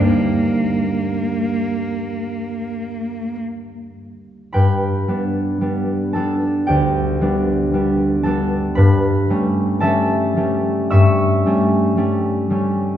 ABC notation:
X:1
M:4/4
L:1/8
Q:1/4=56
K:Gm
V:1 name="Harp"
z8 | [K:G] [Bgb]3 [Aa] [Gdg]3 [Aa] | [Bb]2 [Aea]2 [e^c'e']4 |]
V:2 name="Harp"
[G,,G,B,D]8 | [K:G] G,, [G,B,D] [G,B,D] [G,B,D] D,, [G,B,D] [G,B,D] [G,B,D] | G,, [G,A,^C] [G,A,C] [G,A,C] G,, [G,A,C] [G,A,C] [G,A,C] |]
V:3 name="Cello"
B,6 z2 | [K:G] z8 | z8 |]